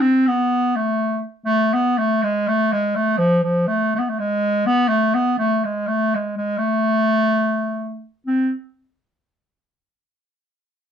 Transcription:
0.01 C4
0.27 B3
0.76 A3
1.45 A3
1.74 B3
1.98 A3
2.23 G#3
2.48 A3
2.72 G#3
2.95 A3
3.17 F3
3.43 F3
3.67 A3
3.95 A3 B3
4.09 A3
4.19 G#3
4.66 B3
4.88 A3
5.15 B3
5.38 A3
5.64 G#3
5.87 A3
6.15 G#3
6.38 G#3
6.58 A3
8.27 C4

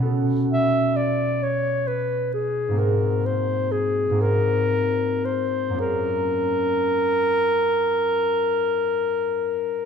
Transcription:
Already playing: B2 B3
0.00 C#4 F#4 A4
0.52 E5
0.96 D5
1.43 C#5
1.88 B4
2.34 G#4
2.69 G#2 A#3 C4
2.74 F#4 G#4
2.79 A#4
3.26 C5
3.72 G#4
4.10 G#2 A#3 C4
4.15 F#4 G#4
4.22 A#4
5.25 C5
5.69 F#2 A#3 C#4
5.75 F4 G#4
5.81 A#4

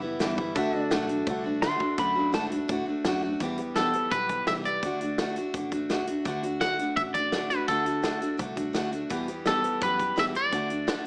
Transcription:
Already playing: F#1
0.01 E3 G3 B3 E4
0.19 G1 E2 B2 E3 G3 B3 E4, snare, closed hi-hat
0.37 E3 G3 B3 E4, kick
0.55 D2 D3 A3 D4 F#4 A4 E5, kick, closed hi-hat
0.73 A3 D4 F#4
0.82 D5
0.91 B1 D3 A3 D4 F#4, snare, closed hi-hat
1.07 A3 D4 F#4, closed hi-hat
1.26 C2 D3 A3 D4 F#4, kick, closed hi-hat
1.44 A3 D4 F#4
1.62 D2 D3 A3 D4 F#4 C6, snare, closed hi-hat
1.79 A3 D4 F#4, kick
1.98 F#2 D3 A3 D4 F#4 B5, kick, closed hi-hat
2.15 A3 D4 F#4
2.32 G#2 D3 A3 D4 F#4 A5, snare, closed hi-hat
2.50 A3 D4 F#4, closed hi-hat
2.68 A2 D3 A3 D4 F#4, kick, closed hi-hat
2.86 A3 D4 F#4, muted fingered electric bass stroke
3.05 F#2 D3 A3 D4 F#4, snare, closed hi-hat
3.23 A3 D4 F#4
3.40 E2 B2 E3 G3 B3 G4, kick, closed hi-hat
3.58 E3 G3 B3 G4, closed hi-hat
3.75 E2 B2 E3 G3 B3 G4 A4, snare, closed hi-hat
3.93 E3 G3 B3 G4, closed hi-hat
4.10 B1 E3 G3 B3 G4 B4, kick, closed hi-hat
4.28 E3 G3 B3 G4, kick, closed hi-hat
4.47 C2 E2 B2 E3 G3 B3 G4 E5, snare, closed hi-hat
4.65 E3 G3 B3 G4 D5, closed hi-hat
4.83 D2 D3 A3 D4 F#4, kick, closed hi-hat
5.00 A3 D4 F#4, closed hi-hat
5.18 D3 A3 D4 F#4, snare, closed hi-hat
5.36 D4 F#4, closed hi-hat
5.40 A3
5.54 A1 D3 A3 D4 F#4, kick, closed hi-hat
5.71 A3 D4 F#4, kick, closed hi-hat
5.89 D3 A3 D4 F#4, snare, closed hi-hat
6.07 A3 D4 F#4, closed hi-hat
6.25 D2 D3 A3 D4 F#4, kick, closed hi-hat
6.43 A3 D4 F#4, closed hi-hat
6.60 D3 A3 D4 F#4 F#5, snare, closed hi-hat
6.79 A3 D4 F#4, closed hi-hat
6.96 A1 D3 A3 D4 E5, kick, closed hi-hat
7.01 F#4
7.14 D4 F#4 D5, kick, closed hi-hat
7.18 A3
7.32 D3 A3 D4 F#4, snare, closed hi-hat
7.50 A3 D4 F#4 B4, closed hi-hat
7.68 D2 D3 A3 D4 F#4 A4, kick, closed hi-hat
7.85 A3 D4 F#4, closed hi-hat
8.02 D3 A3 D4 F#4, snare, closed hi-hat
8.20 A3 D4 F#4, closed hi-hat
8.37 C2 D3 A3 D4 F#4, kick, closed hi-hat
8.56 A3 D4 F#4, kick, closed hi-hat
8.73 D2 D3 A3 D4 F#4, snare, closed hi-hat
8.91 A3 D4 F#4, closed hi-hat
9.09 E2 B2 E3 G3 B3 G4, kick, closed hi-hat
9.28 E3 G3 B3 G4, closed hi-hat
9.45 E2 B2 E3 G3 B3 G4 A4, snare, closed hi-hat
9.62 E3 G3 B3 G4, closed hi-hat
9.81 F#2 E3 G3 B3 B4, kick, closed hi-hat
9.85 G4
9.98 E3 G3 B3 G4, kick, closed hi-hat
10.16 E2 B2 E3 G3 B3 G4 E5, snare, closed hi-hat
10.33 E3 G3 B3 G4 D5, closed hi-hat
10.51 D2 D3 A3 D4 F#4, kick, closed hi-hat
10.69 A3 D4 F#4, closed hi-hat
10.87 D3 A3 D4 F#4, snare, closed hi-hat

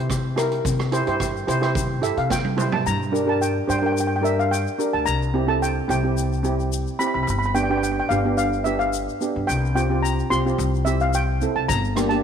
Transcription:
Already playing: C3 E4 G4 C5
0.10 kick, cross-stick, closed hi-hat, shaker
0.36 E4 G4 A#4, cross-stick, closed hi-hat, shaker
0.51 closed hi-hat
0.65 C3, kick, closed hi-hat, shaker
0.79 cross-stick, shaker
0.92 E4 G4 C5, closed hi-hat, shaker
1.07 G2 E4 G4 C5, closed hi-hat
1.20 kick, cross-stick, closed hi-hat, shaker
1.37 shaker
1.47 C3 E4 G4 C5, closed hi-hat, shaker
1.61 E4 G4 C5, cross-stick, closed hi-hat
1.75 kick, closed hi-hat, shaker
2.02 G2 E4 G4 A4 E5, closed hi-hat, shaker
2.17 C3 F5, closed hi-hat
2.30 G5, kick, snare, shaker
2.44 high tom
2.57 E4 G4 C5, mid tom, shaker
2.72 A5, floor tom
2.86 G2 A#5, shaker
3.03 shaker
3.12 D4 G4 A#4, shaker
3.26 D4 G4 A#4 A5
3.41 G5, shaker
3.67 G2 D4 G4 C5 G5, shaker
3.79 D4 G4 G5
3.83 A#4 G5
3.92 G5
3.97 G5, shaker
4.07 G5
4.16 G5
4.21 D4 G4 A#4 E5, shaker
4.39 F5, shaker
4.51 G5, shaker
4.67 shaker
4.79 D4 G4 A#4, shaker
4.93 D2 A5
5.06 C2 A#5, shaker
5.22 shaker
5.34 C4 E4 G4
5.47 C4 E4 A4 A5
5.62 G5, shaker
5.88 C2 C4 E4 G4 G5, shaker
6.03 C4 E4 G4
6.17 shaker
6.33 shaker
6.43 C4 E4 G4, shaker
6.60 shaker
6.73 shaker
6.87 shaker
6.99 C4 E4 G4 B5, shaker
7.07 B5
7.14 C2 B5
7.23 B5
7.27 G1 B5, shaker
7.39 B5
7.43 B5, shaker
7.55 B3 D4 G4 G5, shaker
7.63 G5
7.69 B3 D4 G4 G5
7.77 G5
7.83 G5, shaker
7.92 G5
8.00 G5
8.09 G1 B3 D4 G4 F5, shaker
8.25 B3 D4 G4
8.37 F5, shaker
8.53 shaker
8.64 B3 D4 G4 E5, shaker
8.79 F5, shaker
8.93 shaker
9.09 shaker
9.20 B3 D4 G4, shaker
9.36 G2
9.47 C2 G5, shaker
9.65 shaker
9.75 C4 F4 G4 G5, shaker
9.90 C4 F4 G4
10.02 A#5, shaker
10.19 shaker
10.30 C2 C4 F4 G4 C6, shaker
10.45 C4 F4 G4, shaker
10.58 C2, shaker
10.74 shaker
10.85 C4 E4 G4 E5, shaker
11.00 F5, shaker
11.14 G5, shaker
11.41 C4 E4 A4, shaker
11.56 C2 A5
11.68 G1 A#5, kick, closed hi-hat, shaker
11.84 shaker
11.96 A#3 D4 G4, cross-stick, closed hi-hat, shaker
12.09 A#3 D4 G4 A5, closed hi-hat

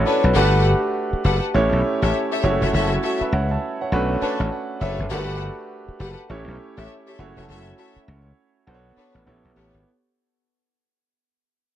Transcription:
Already playing: A3 C#4 D4 E4 F#4 A4 B4 C#5
0.06 D4 A4 B4 C#5 D5
0.24 B1 F#4 B4
0.35 G1 A3 D4 F#4 G4 A4 B4 F#5
1.13 muted slap bass stroke
1.24 F#1 G4 A4 B4 F#5
1.54 A1 A3 C#4 E4 G4 C#5
1.72 B1
2.02 A1 G4 A4 C#5 E5
2.31 G4 A4 C#5 E5
2.43 F#1 G3 C#4 E4 F#4 C#5
2.50 A3
2.61 F1 F#4 A4 C#5 E5
2.73 F#1 F#4 A4 C#5 E5
3.03 F#4 A4 C#5 E5
3.21 B4 E5, muted slap bass stroke
3.32 C#2 C#5 F#5
3.51 E5 A5
3.81 C#5 F#5
3.92 B1 A3 C#4 D4 F#4 B4
4.21 D4 A4 B4 C#5 A5, muted slap bass stroke
4.40 A1
4.52 F#5
4.81 F#1 D4 A4 B4 C#5 E5
4.99 F#1
5.10 G1 A3 D4 F#4 G4 A4 A#4 B4 F#5
5.18 B4
5.88 muted slap bass stroke
5.99 F#1 G4 A4 B4 F#5
6.29 A1 A3 C#4 E4 G4 C#5
6.48 B1
6.77 A1 G4 A4 C#5 E5
7.07 G4 A4 C#5 E5
7.19 F#1 A3 C#4 E4 F#4 C#5
7.36 F1 F#4 A4 C#5 E5
7.48 F#1 F#4 A4 C#5 E5
7.78 F#4 A4 C#5 E5
7.96 muted slap bass stroke
8.08 C#2
8.67 B1 B3 D4 F#4 A4 C5
8.74 C#5
8.96 D4 A4 B4 C#5, muted slap bass stroke
9.15 A1
9.26 A1 B3 E4 G4 A4 C#5
9.44 B1
9.56 A1 G4 A4 B4 C#5
9.74 G#1

